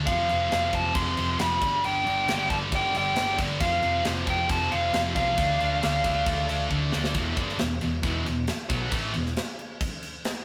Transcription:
0.06 F1 F2 C3 F3 F5, kick, crash
0.28 F1 F2 C3 F3, crash
0.51 F1 F2 C3 F3, snare, crash
0.72 F1 F2 C3 F3 A5, kick, crash
0.94 F1 F2 C3 F3 C6, kick, crash
1.17 F1 F2 C3 F3, crash
1.39 F1 F2 C3 F3 B5, snare, crash
1.61 G1 G2 D3 G3, kick, crash
1.83 G1 G2 D3 G3 G5, crash
2.06 G1 G2 D3 G3, crash
2.27 G1 G2 D3 G3, snare, crash
2.50 G1 G2 D3 G3 A5, kick, crash
2.72 G1 G2 D3 G3 G5, kick, crash
2.94 G1 G2 D3 G3 G5, crash
3.15 G1 G2 D3 G3, snare, crash
3.38 G1 G2 D3 G3, kick, crash
3.60 F1 F2 C3 F3 F5, kick, crash
3.82 F1 F2 C3 F3, crash
4.04 F1 F2 C3 F3, snare, crash
4.26 F1 F2 C3 F3 G5, kick, crash
4.48 F1 F2 C3 F3 A5, kick, crash
4.71 F1 F2 C3 F3 F5, crash
4.93 F1 F2 C3 F3 F5, snare, crash
5.15 C2 F2 C3 F3 F5, kick, crash
5.38 D2 D3 A3 D4, kick, crash
5.60 D2 D3 A3 D4, crash
5.83 D2 D3 A3 D4, snare, crash
6.04 D2 D3 A3 D4, kick, crash
6.26 D2 D3 A3 D4, kick, crash
6.49 D2 D3 A3 D4, crash
6.71 D2 D3 A3 D4, kick
6.92 D2 D3 A3 D4, snare
7.04 snare
7.14 E1 E2 B2 E3, kick, crash
7.37 G1 G2 D3 G3, kick, crash
7.49 snare
7.58 E1 E2 B2, snare, crash
7.81 E1 E2 B2, crash
8.03 E1 E2 B2 E3, kick, crash
8.26 E1 E2 B2, crash
8.47 snare, crash
8.69 B1 B2 F#3 B3, kick, crash
8.91 A1 A2 E3 A3, kick, crash
9.14 E1 E2 B2, crash
9.26 snare
9.37 snare, crash
9.59 crash
9.81 kick, crash
10.03 crash
10.25 snare, crash

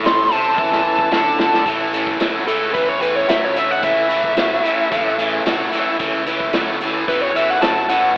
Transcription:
Already playing: A1 A2
0.03 C#4 E4 A4 C6, snare, open hi-hat
0.30 C2 C3 C#4 E4 A4 A5, open hi-hat
0.58 E2 E3 C#4 E4 A4, kick
0.72 snare
0.87 C#4 E4 A4
0.99 kick
1.11 D2 D3 C#4 E4 A4 A5, snare
1.39 A4 A5, snare
1.44 C#4 E4
1.54 snare
1.66 A1 A2 E3 C#4 E4 A4, kick, closed hi-hat
1.92 A2 E3 C#4 E4 A4, closed hi-hat
2.07 kick
2.20 C#2 A2 F#3 C#4 E4 A4, snare, closed hi-hat
2.46 A2 E3 C#4 E4 G#4 A4, closed hi-hat
2.73 E2 A2 E3 C#4 E4 A4 B4, kick, closed hi-hat
2.89 C#5
3.00 A2 E3 C#4 E4 A4 B4, closed hi-hat
3.16 C#5
3.28 D2 A2 F#3 C#4 E4 A4 E5, snare, closed hi-hat
3.45 C#5
3.55 A2 E3 C#4 E4 A4 E5, closed hi-hat
3.71 F#5
3.82 C#2 A2 E3 C#4 E4 A4 E5, kick, closed hi-hat
4.09 A2 E3 C#4 E4 A4, closed hi-hat
4.24 kick
4.37 G#1 A2 F#3 C#4 E4 A4, snare, closed hi-hat
4.63 A2 E3 C#4 E4 A4, muted fingered electric bass stroke, closed hi-hat
4.91 A1 A2 E3 C#4 E4 A4, kick, closed hi-hat
5.18 A2 E3 C#4 E4 G#4 A5, closed hi-hat
5.44 B1 A2 F#3 C#4 E4 A4 F#5, snare, closed hi-hat
5.72 A2 E3 C#4 E4 A4 E5, muted fingered electric bass stroke, snare, closed hi-hat
5.99 C#2 A2 E3 C#4 E4 A4, kick, closed hi-hat
6.26 A2 E3 C#4 E4 B4, closed hi-hat
6.40 kick
6.53 D2 A2 F#3 C#4 E4 A4, snare, closed hi-hat
6.80 A2 E3 C#4 A4, closed hi-hat
6.85 E4
7.07 E2 A2 E3 C#4 E4 F#4 B4, kick, closed hi-hat
7.21 C#5
7.34 A2 E3 C#4 E4 F#4 E5, closed hi-hat
7.50 F#5
7.60 F#2 A2 F#3 C#4 E4 A4 A5, snare, closed hi-hat
7.89 A2 E3 C#4 E4 A4 F#5, snare, closed hi-hat

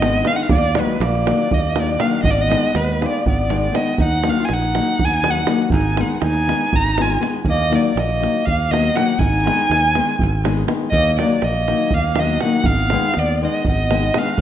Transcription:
Already playing: G#1 B3 D#5
0.01 D#3 G#3 B3 D#4, davul high
0.24 D#3 G#3 B3 D4 D#4 F5, davul high
0.30 D#4
0.36 D4 F#5
0.42 F5
0.49 D#2 A#3 D5, davul low
0.75 D#3 F#3 G#3 A#3 D#4, davul high
0.80 B4
0.99 A#1 A#3 D5, davul high
1.15 davul high
1.26 D#3 F#3 A#3 D#4, davul high
1.51 D#2 A#3 D#5, davul low
1.75 D#3 F#3 A#3 D#4 D5, davul high
1.99 D#3 F#3 A#3 D4 D#4 F5, davul high
2.23 G#1 B3 D#5, davul low
2.29 A#3 D5
2.36 B3
2.41 D#5
2.49 D#3 G#3 B3 D#4, davul high
2.64 davul high
2.75 D#2 G#3 B4, davul high
3.01 D#3 G#3 A#3 B3 D#4, davul high
3.06 D5
3.26 G#1 B3 D5, davul low
3.49 D#3 G#3 B3 D#4, davul high
3.72 D#3 G#3 B3 D#4 D#5, davul high
3.86 davul high
3.98 D#2 D#4, davul low
4.03 F#5
4.22 D#3 F#3 A#3 D4 D#4, davul high
4.29 F5
4.40 F4
4.45 G#5, davul high
4.50 A#1 D#4 F#5
4.62 davul high
4.73 D#3 F#3 A#3 D#4, davul high
4.99 D#2, davul low
5.04 D#4 G#5
5.22 D#3 F#3 A#3 D#4, davul high
5.28 D#4 F#5
5.45 D#3 F#3 A#3 D#4, davul high
5.70 G#1 D#4, davul low
5.75 G#5
5.97 D#3 G#3 B3 D#4 F#5, davul high
6.21 D#2 D#4 G#5, davul high
6.35 davul high
6.47 D#3 G#3 B3 D#4, davul high
6.73 G#1 D#4 A#5, davul low
6.97 D#3 G#3 B3 D#4 F4, davul high
7.02 G#5
7.20 D#3 G#3 B3 D#4, davul high
7.45 D#2, davul low
7.49 A#3 D#5
7.70 D#3 F#3 A#3 D#4, davul high
7.74 D5
7.96 A#1 A#3 D#5, davul high
8.10 davul high
8.20 D#3 F#3 A#3 D#4, davul high
8.45 D#2 A#3 F5, davul low
8.70 D#3 F#3 A#3 B3 D#4 D#5, davul high
8.94 D#3 F#3 A#3 D#4 F#5, davul high
9.18 G#1 D#4 G#5, davul low
9.44 D#3 G#3 B3 D#4, davul high
9.59 davul high
9.70 D#2, davul high
9.84 davul high
9.95 D#3 G#3 B3 D#4, davul high
10.19 G#1, davul low
10.44 D#3 G#3 B3 D#4, davul high
10.57 davul high
10.67 D#3 G#3 B3 D#4, davul high
10.90 D#2 A#3 D#5, davul low
11.18 D#3 F#3 A#3 D#4 D5, davul high
11.42 A#1 A#3 D#5, davul high
11.54 davul high
11.68 D#3 F#3 A#3 D#4, davul high
11.91 D#2 A#3 F5, davul low
12.15 D#3 F#3 A#3 D#4 D#5, davul high
12.21 B3
12.41 D#3 F#3 A#3 D#4 F#5, davul high
12.45 D#4
12.64 G#1 B3 F5, davul low
12.90 D#3 G#3 B3 D#4, davul high
13.14 D#2 B3, davul high
13.19 D5
13.28 davul high
13.42 D#3 G#3 B3 D#4 D#5
13.65 G#1 B3, davul low
13.69 D#5
13.91 D#3 G#3 B3 D#4, davul high
14.14 D#3 G#3 B3 D#4, davul high
14.18 D4 F5
14.38 davul low

